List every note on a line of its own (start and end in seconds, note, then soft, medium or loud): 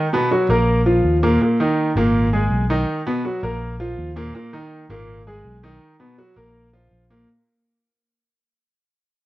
0.13 0.28 B2 medium
0.13 0.28 B3 medium
0.31 0.46 F#3 medium
0.31 0.46 F#4 medium
0.49 1.00 A#1 medium
0.49 0.80 A#3 medium
0.49 0.80 A#4 medium
0.86 1.16 F3 medium
0.86 1.16 F4 medium
1.04 1.37 D#2 medium
1.23 1.38 A#2 medium
1.23 1.38 A#3 medium
1.41 1.56 A#2 medium
1.41 1.57 A#3 medium
1.60 1.90 D#3 medium
1.60 1.90 D#4 medium
1.95 2.47 G#1 medium
1.95 2.27 A#2 medium
1.95 2.27 A#3 medium
2.33 2.63 G#3 medium
2.33 2.63 G#4 medium
2.51 2.83 B1 medium
2.70 3.00 D#3 medium
2.70 3.00 D#4 medium
3.07 3.22 B2 medium
3.07 3.22 B3 medium
3.25 3.40 F#3 medium
3.25 3.40 F#4 medium
3.43 3.94 A#1 medium
3.43 3.73 A#3 medium
3.43 3.73 A#4 medium
3.80 4.10 F3 medium
3.80 4.10 F4 medium
3.98 4.30 D#2 medium
4.16 4.31 A#2 medium
4.16 4.32 A#3 medium
4.35 4.50 A#2 medium
4.35 4.50 A#3 medium
4.53 4.83 D#3 medium
4.53 4.83 D#4 medium
4.89 5.41 G#1 medium
4.89 5.20 A#2 medium
4.89 5.20 A#3 medium
5.27 5.57 G#3 medium
5.27 5.57 G#4 medium
5.44 5.77 B1 medium
5.63 5.93 D#3 medium
5.63 5.94 D#4 medium
6.00 6.15 B2 medium
6.00 6.15 B3 medium
6.18 6.33 F#3 medium
6.18 6.34 F#4 medium
6.36 6.88 A#1 medium
6.36 6.67 A#3 medium
6.36 6.67 A#4 medium
6.73 7.03 F3 medium
6.73 7.04 F4 medium
6.91 7.24 A#1 medium
7.10 7.25 A#2 medium
7.10 7.25 A#3 medium